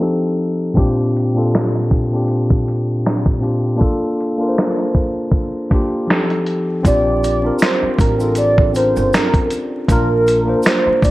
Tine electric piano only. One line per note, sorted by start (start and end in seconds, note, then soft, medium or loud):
0.00 0.62 F3 medium
0.00 0.63 C4 medium
0.00 0.63 D#4 medium
0.00 0.64 G4 medium
0.00 0.64 A4 medium
0.74 1.15 A#2 loud
0.74 1.15 C4 medium
0.74 1.16 D4 loud
0.74 1.16 F4 medium
0.78 1.17 G4 loud
1.34 1.86 A#2 medium
1.34 1.86 C4 medium
1.34 1.87 D4 medium
1.34 1.87 F4 medium
1.39 1.88 A4 medium
2.12 3.01 A#2 medium
2.12 3.02 C4 medium
2.12 3.02 D4 medium
2.12 3.03 F4 medium
2.16 3.03 G4 medium
3.40 3.69 A#2 medium
3.40 3.69 C4 medium
3.40 3.70 D4 medium
3.40 3.70 F4 medium
3.44 3.71 G4 medium
3.76 4.18 A#3 loud
3.76 4.18 D4 loud
3.76 4.19 F4 medium
3.81 4.20 A4 loud
4.38 5.28 A#3 medium
4.38 5.29 D4 medium
4.38 5.30 F4 medium
4.42 4.47 A#4 medium
4.49 5.34 C5 medium
5.70 6.08 A#3 medium
5.70 6.09 D4 medium
5.70 6.10 F4 medium
5.74 6.09 G4 medium
6.07 6.70 F3 medium
6.07 6.71 C4 medium
6.07 6.71 D#4 medium
6.07 6.72 G4 medium
6.11 6.72 A4 medium
6.83 7.23 C4 medium
6.83 7.24 D4 medium
6.83 7.24 F4 medium
6.87 7.25 G4 loud
7.42 7.93 C4 medium
7.42 7.94 D4 medium
7.42 7.95 F4 medium
7.46 7.95 A#4 medium
8.18 8.58 C4 medium
8.18 8.58 D4 medium
8.18 8.59 F4 medium
8.22 8.60 A4 medium
8.73 9.52 C4 medium
8.73 8.82 C#4 soft
8.73 9.53 F4 medium
8.78 9.56 D4 medium
8.78 9.54 A#4 medium
9.88 10.27 A#3 medium
9.88 10.28 D4 medium
9.88 10.29 F4 medium
9.93 10.30 A#4 loud
10.45 10.97 A#3 medium
10.45 10.98 D4 medium
10.45 10.98 F4 medium
10.50 10.99 C5 medium